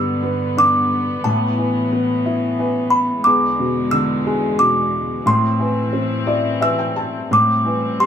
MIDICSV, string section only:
0, 0, Header, 1, 2, 480
1, 0, Start_track
1, 0, Key_signature, 0, "minor"
1, 0, Tempo, 671141
1, 892, Time_signature, 3, 2, 24, 8
1, 4241, Tempo, 685714
1, 5734, End_track
2, 0, Start_track
2, 0, Title_t, "String section"
2, 0, Program_c, 0, 48
2, 0, Note_on_c, 0, 43, 78
2, 0, Note_on_c, 0, 50, 73
2, 0, Note_on_c, 0, 59, 82
2, 873, Note_off_c, 0, 50, 0
2, 874, Note_off_c, 0, 43, 0
2, 887, Note_on_c, 0, 45, 76
2, 887, Note_on_c, 0, 52, 67
2, 2295, Note_off_c, 0, 59, 0
2, 2308, Note_off_c, 0, 45, 0
2, 2308, Note_off_c, 0, 52, 0
2, 2321, Note_on_c, 0, 50, 70
2, 2324, Note_on_c, 0, 40, 79
2, 2325, Note_on_c, 0, 56, 84
2, 3741, Note_off_c, 0, 50, 0
2, 3742, Note_off_c, 0, 40, 0
2, 3743, Note_off_c, 0, 56, 0
2, 3756, Note_on_c, 0, 45, 76
2, 3758, Note_on_c, 0, 52, 72
2, 3759, Note_on_c, 0, 60, 85
2, 5187, Note_off_c, 0, 45, 0
2, 5188, Note_off_c, 0, 52, 0
2, 5188, Note_off_c, 0, 60, 0
2, 5204, Note_on_c, 0, 45, 69
2, 5206, Note_on_c, 0, 55, 68
2, 5207, Note_on_c, 0, 60, 77
2, 5734, Note_off_c, 0, 45, 0
2, 5734, Note_off_c, 0, 55, 0
2, 5734, Note_off_c, 0, 60, 0
2, 5734, End_track
0, 0, End_of_file